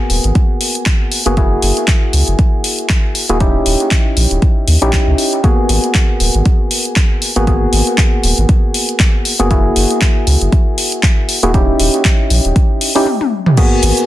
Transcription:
Already playing: synth stab A#3 B3 F#4 G#4
0.10 sub bass D#1, open hi-hat
0.24 sub bass G#1, closed hi-hat
0.35 kick, closed hi-hat
0.61 open hi-hat
0.75 closed hi-hat
0.86 kick, clap, closed hi-hat
1.12 open hi-hat
1.26 sub bass F#1, synth stab A#3 B3 F#4 G#4, closed hi-hat
1.37 synth stab A#3 E4 F#4 G#4, kick, closed hi-hat
1.62 sub bass F#1, open hi-hat
1.77 closed hi-hat
1.88 kick, clap, closed hi-hat
2.13 sub bass C#2, open hi-hat
2.28 sub bass F#1, closed hi-hat
2.39 kick, closed hi-hat
2.64 open hi-hat
2.79 closed hi-hat
2.89 kick, clap, closed hi-hat
3.15 open hi-hat
3.29 sub bass D#1, synth stab A#3 E4 F#4 G#4, closed hi-hat
3.40 synth stab C#4 D#4 E4 G4, kick, closed hi-hat
3.66 sub bass D#1, open hi-hat
3.80 closed hi-hat
3.91 kick, clap, closed hi-hat
4.17 sub bass A#1, open hi-hat
4.31 sub bass D#1, closed hi-hat
4.42 kick, closed hi-hat
4.67 sub bass D#2, open hi-hat
4.82 sub bass A#1, synth stab C#4 D#4 E4 G4, closed hi-hat
4.93 kick, clap, closed hi-hat
5.07 sub bass C#2
5.18 open hi-hat
5.33 closed hi-hat
5.43 synth stab A#3 B3 F#4 G#4, kick, closed hi-hat
5.69 sub bass G#1, open hi-hat
5.84 closed hi-hat
5.95 kick, clap, closed hi-hat
6.20 sub bass D#1, open hi-hat
6.35 sub bass G#1, closed hi-hat
6.45 kick, closed hi-hat
6.71 open hi-hat
6.85 closed hi-hat
6.96 kick, clap, closed hi-hat
7.22 open hi-hat
7.36 sub bass G#1, synth stab A#3 B3 F#4 G#4, closed hi-hat
7.47 synth stab A#3 B3 F#4 G#4, kick, closed hi-hat
7.73 sub bass G#1, open hi-hat
7.87 closed hi-hat
7.98 kick, clap, closed hi-hat
8.24 sub bass D#1, open hi-hat
8.38 sub bass G#1, closed hi-hat
8.49 kick, closed hi-hat
8.74 open hi-hat
8.89 closed hi-hat
9.00 kick, clap, closed hi-hat
9.25 open hi-hat
9.39 sub bass F#1, synth stab A#3 B3 F#4 G#4, closed hi-hat
9.50 synth stab A#3 E4 F#4 G#4, kick, closed hi-hat
9.76 sub bass F#1, open hi-hat
9.90 closed hi-hat
10.01 kick, clap, closed hi-hat
10.27 sub bass C#2, open hi-hat
10.41 sub bass F#1, closed hi-hat
10.52 kick, closed hi-hat
10.78 open hi-hat
10.92 closed hi-hat
11.03 kick, clap, closed hi-hat
11.29 open hi-hat
11.43 sub bass D#1, synth stab A#3 E4 F#4 G#4, closed hi-hat
11.54 synth stab C#4 D#4 E4 G4, kick, closed hi-hat
11.80 sub bass D#1, open hi-hat
11.94 closed hi-hat
12.05 kick, clap, closed hi-hat
12.30 sub bass A#1, open hi-hat
12.45 sub bass D#1, closed hi-hat
12.56 kick, closed hi-hat
12.81 open hi-hat
12.95 synth stab C#4 D#4 E4 G4, open hi-hat
13.07 high tom
13.21 high tom
13.46 mid tom
13.57 synth stab A#3 B3 F#4 G#4, kick, closed hi-hat, crash, cabasa
13.83 sub bass G#1, open hi-hat, cabasa
13.97 closed hi-hat, cabasa

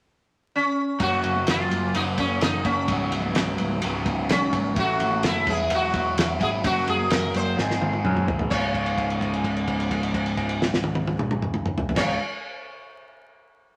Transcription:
0.56 sitar C#4
0.99 picked electric bass F#1, overdriven electric guitar F#2 C#3 F#3 A#3 C#4 F#4, sitar F#4, kick, ride, low conga
1.23 picked electric bass F#1, ride
1.36 high conga
1.47 picked electric bass F#1, sitar F4, snare, ride
1.70 picked electric bass F#1, ride, high conga, low conga
1.94 picked electric bass F#1, overdriven electric guitar F#2 C#3 F#3 A#3 C#4 F#4, sitar D#4, ride
2.18 picked electric bass F#1, sitar C#4, kick, ride, high conga
2.41 picked electric bass F#1, sitar D#4, snare, ride
2.65 picked electric bass F#1, sitar C#4, kick, ride, high conga
2.88 picked electric bass C#1, overdriven electric guitar C#2 G#2 C#3 F#3 B3, kick, ride, low conga
3.12 picked electric bass C#1, ride
3.25 high conga
3.35 picked electric bass C#1, snare, ride
3.58 picked electric bass C#1, ride, high conga, low conga
3.82 picked electric bass C#1, overdriven electric guitar C#2 G#2 C#3 F#3, ride
3.86 overdriven electric guitar B3
4.05 picked electric bass C#1, kick, ride, high conga
4.29 picked electric bass B1, sitar C#4, snare, ride
4.53 picked electric bass G#1, kick, ride, high conga, low conga
4.75 picked electric bass A1, overdriven electric guitar A2 E3 A3 C#4 E4 A4, sitar F#4, kick, ride, low conga
5.00 picked electric bass A1, ride
5.12 high conga
5.23 picked electric bass F#1, snare, ride
5.27 sitar E4
5.46 picked electric bass E1, overdriven electric guitar E2 B2 E3 F#3 B3 E4, sitar G#4, kick, ride, high conga, low conga
5.70 picked electric bass E1, ride
5.74 sitar F#4
5.94 picked electric bass E1, kick, ride, high conga
6.17 picked electric bass E1, snare, ride
6.40 picked electric bass G#1, overdriven electric guitar E2 B2 E3 F#3 B3 E4, sitar G#4, kick, ride, high conga, low conga
6.63 picked electric bass F#1, overdriven electric guitar F#2 C#3 F#3 A#3 C#4 F#4, sitar F#4, kick, ride, low conga
6.87 picked electric bass F#1, sitar G#4, ride, low conga
7.00 high conga
7.10 picked electric bass F#1, sitar A#4, snare, ride
7.34 picked electric bass F#1, sitar C5, ride, low conga
7.56 picked electric bass G#1, overdriven electric guitar G#2 D#3 G#3 C4 D#4, snare
7.60 overdriven electric guitar G#4
7.71 snare
7.81 picked electric bass G#1, high tom, high conga
7.93 high tom
8.04 picked electric bass F#2, mid tom
8.17 mid tom, high conga
8.27 picked electric bass G#1, floor tom, high conga, low conga
8.39 floor tom
8.50 picked electric bass C#1, overdriven electric guitar C#2 G#2 C#3 G#3, sitar C#5, kick, crash, high conga
8.54 overdriven electric guitar F4
8.74 kick, crash
8.86 crash
8.98 kick, crash
9.10 crash
9.21 kick, crash
9.34 crash
9.44 kick, crash
9.57 crash
9.68 kick, crash
9.80 crash
9.91 kick, crash
10.03 crash
10.14 kick, crash
10.26 crash
10.37 kick, crash
10.49 crash
10.62 snare
10.74 snare
10.84 high tom
10.95 high tom
11.07 high tom
11.19 mid tom
11.31 mid tom
11.42 mid tom
11.54 mid tom
11.66 mid tom
11.78 floor tom
11.89 floor tom
11.95 picked electric bass C#1, overdriven electric guitar C#2 G#2 C#3 G#3, sitar C#5, kick, snare, crash
12.00 overdriven electric guitar F4

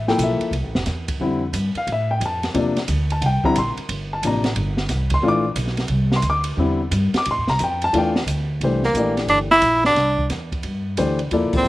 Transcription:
Already playing: upright bass A1
0.08 grand piano F3 A#3 E4 A4 G5, snare
0.18 upright bass B1, hi-hat pedal, ride
0.23 grand piano E5
0.41 muted upright bass stroke, ride
0.51 upright bass C2, ride
0.63 upright bass A1
0.75 upright bass E1, snare
0.86 upright bass E2, snare, hi-hat pedal, ride
1.08 kick, ride
1.20 upright bass F2, grand piano D3 G3 C4 E4
1.53 upright bass G2, hi-hat pedal, ride
1.75 grand piano F5, muted upright bass stroke, ride
1.87 upright bass A2, ride
1.92 grand piano E5
2.11 grand piano G5
2.20 upright bass F2, hi-hat pedal, ride
2.26 grand piano A5
2.43 snare, ride
2.54 upright bass E2, grand piano C3 F3 A#3 D4, ride
2.76 snare, ride
2.88 upright bass D2, hi-hat pedal, ride
3.10 grand piano A5, ride
3.21 upright bass C2, grand piano F#5, ride
3.26 grand piano G5
3.44 grand piano D3 G3 C4 E4 A#5, muted upright bass stroke, kick
3.56 upright bass A#1, grand piano C6, hi-hat pedal, ride
3.77 muted upright bass stroke, ride
3.89 upright bass G1, ride
4.13 grand piano A5
4.22 upright bass A1, grand piano C3 F3 A#3 D4, hi-hat pedal, ride
4.27 grand piano A#5
4.44 snare, ride
4.56 upright bass G1, ride
4.77 snare
4.89 upright bass C2, snare, hi-hat pedal, ride
5.10 kick, ride
5.14 grand piano C6
5.22 upright bass A#1, grand piano E3 A3 D4 F4
5.28 grand piano D6
5.56 upright bass B1, hi-hat pedal, ride
5.67 snare
5.77 snare, ride
5.88 upright bass C2, ride
6.12 snare
6.16 grand piano C6
6.22 upright bass D2, hi-hat pedal, ride
6.30 grand piano D6
6.44 ride
6.57 upright bass E2, grand piano D3 G3 C4 E4
6.91 upright bass G2, hi-hat pedal, ride
7.13 muted upright bass stroke, snare, ride
7.18 grand piano D6
7.25 upright bass A2, ride
7.31 grand piano C6
7.38 upright bass E2
7.47 upright bass C2, grand piano A#5, snare
7.59 upright bass F2, hi-hat pedal, ride
7.64 grand piano G5
7.82 grand piano A5, ride
7.93 upright bass E2, grand piano E3 A3 D4 F4, ride
7.98 grand piano G5
8.16 snare
8.26 upright bass D2, hi-hat pedal, ride
8.61 upright bass C2, grand piano E3 A3 D4 G4 C5, ride
8.83 tenor saxophone A#3, snare
8.94 upright bass A#1, grand piano E3 A3 D4 G4 D5, hi-hat pedal, ride
9.17 snare, ride
9.27 upright bass G1, tenor saxophone D4, ride
9.51 tenor saxophone E4, snare
9.62 upright bass A#1, hi-hat pedal, ride
9.84 tenor saxophone D4, snare
9.95 upright bass C2, snare, ride
10.18 kick
10.30 upright bass E2, snare, hi-hat pedal, ride
10.52 kick, ride
10.63 upright bass G2, ride
10.97 upright bass D2, grand piano E3 A3 D4 G4 C5, hi-hat pedal, ride
11.19 ride
11.31 upright bass E2, grand piano F3 A#3 E4 A4 D5, ride
11.43 upright bass C2
11.53 upright bass A1, tenor saxophone C4, kick, crash
11.64 upright bass A2, hi-hat pedal

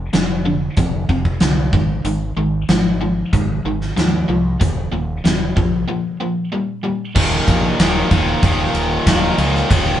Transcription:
Already playing: overdriven electric guitar F2 C3
0.13 fingered electric bass F1, overdriven electric guitar F2 D3, snare, closed hi-hat
0.45 overdriven electric guitar F2 D3
0.77 fingered electric bass F1, overdriven electric guitar F2 C3, kick, closed hi-hat
1.09 fingered electric bass F1, overdriven electric guitar F2 C3, kick
1.25 kick
1.40 fingered electric bass C2, overdriven electric guitar F2 D3, snare, closed hi-hat
1.73 fingered electric bass G#1, overdriven electric guitar G#2 D#3, kick
2.05 fingered electric bass G#1, overdriven electric guitar G#2 D#3, closed hi-hat
2.37 fingered electric bass G#1, overdriven electric guitar G#2 D#3
2.69 fingered electric bass G#1, overdriven electric guitar G#2 F3, snare, closed hi-hat
3.01 overdriven electric guitar G#2 F3
3.33 fingered electric bass G#1, overdriven electric guitar G#2 D#3, kick, closed hi-hat
3.65 fingered electric bass G#1, overdriven electric guitar G#2 D#3
3.81 snare
3.97 fingered electric bass D#2, overdriven electric guitar G#2 F3, snare, closed hi-hat
4.29 fingered electric bass C2, overdriven electric guitar G#2 F3
4.61 fingered electric bass D#1, overdriven electric guitar D#2 A#2, kick, closed hi-hat
4.92 fingered electric bass D#1, overdriven electric guitar D#2 A#2
5.25 fingered electric bass D#1, overdriven electric guitar D#2 C3, snare, closed hi-hat
5.57 fingered electric bass A#1, overdriven electric guitar A#2 F3, kick
5.88 overdriven electric guitar A#2 F3
6.21 overdriven electric guitar A#2 F3
6.52 overdriven electric guitar A#2 G3
6.84 overdriven electric guitar A#2 G3
7.15 fingered electric bass D#1, overdriven electric guitar D#2 A#2 D#3, kick, crash
7.48 fingered electric bass A#1, kick, ride
7.79 fingered electric bass D#1, overdriven electric guitar D#2 A#2 D#3, snare, ride
8.11 fingered electric bass D#1, overdriven electric guitar D#2 A#2 D#3, kick, ride
8.43 fingered electric bass D#1, overdriven electric guitar D#2 A#2 D#3, kick, ride
8.74 fingered electric bass D#1, ride
9.06 fingered electric bass D#1, overdriven electric guitar D#2 A#2 D#3, kick, snare, ride
9.38 fingered electric bass C#2, overdriven electric guitar D#2 A#2 D#3, ride
9.55 snare
9.70 fingered electric bass D#1, overdriven electric guitar D#2 A#2 D#3, kick, ride

